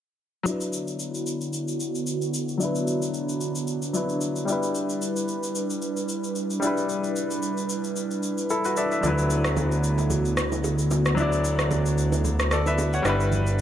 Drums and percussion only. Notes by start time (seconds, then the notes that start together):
0.46 shaker
0.61 shaker
0.73 shaker
0.88 shaker
1.00 shaker
1.15 shaker
1.27 shaker
1.41 shaker
1.53 shaker
1.68 shaker
1.80 shaker
1.95 shaker
2.07 shaker
2.22 shaker
2.34 shaker
2.49 shaker
2.61 shaker
2.75 shaker
2.87 shaker
3.02 shaker
3.14 shaker
3.29 shaker
3.41 shaker
3.55 shaker
3.67 shaker
3.82 shaker
3.94 shaker
4.09 shaker
4.21 shaker
4.36 shaker
4.48 shaker
4.63 shaker
4.75 shaker
4.90 shaker
5.02 shaker
5.16 shaker
5.28 shaker
5.43 shaker
5.55 shaker
5.70 shaker
5.82 shaker
5.97 shaker
6.09 shaker
6.24 shaker
6.36 shaker
6.50 shaker
6.62 shaker
6.77 shaker
6.89 shaker
7.04 shaker
7.16 shaker
7.31 shaker
7.43 shaker
7.57 shaker
7.69 shaker
7.84 shaker
7.96 shaker
8.11 shaker
8.23 shaker
8.38 shaker
8.50 shaker
8.65 shaker
8.77 shaker
8.91 shaker
9.03 low conga, shaker
9.18 shaker
9.30 shaker
9.44 cross-stick, shaker
9.57 high bongo, low conga, shaker
9.72 shaker
9.84 shaker
9.98 low bongo, shaker
10.10 high bongo, low conga, shaker
10.25 shaker
10.37 cross-stick, shaker
10.52 low bongo, shaker
10.64 high bongo, shaker
10.79 shaker
10.91 low bongo, shaker
11.06 cross-stick, shaker
11.17 low conga, shaker
11.32 shaker
11.45 shaker
11.59 cross-stick, shaker
11.71 high bongo, low conga, shaker
11.86 shaker
11.98 shaker
12.12 low bongo, shaker
12.25 high bongo, low conga, shaker
12.39 cross-stick, shaker
12.51 cross-stick, shaker
12.66 low bongo, shaker
12.78 high bongo, shaker
12.93 shaker
13.05 cross-stick, low bongo, shaker
13.20 shaker
13.32 low conga, shaker
13.47 shaker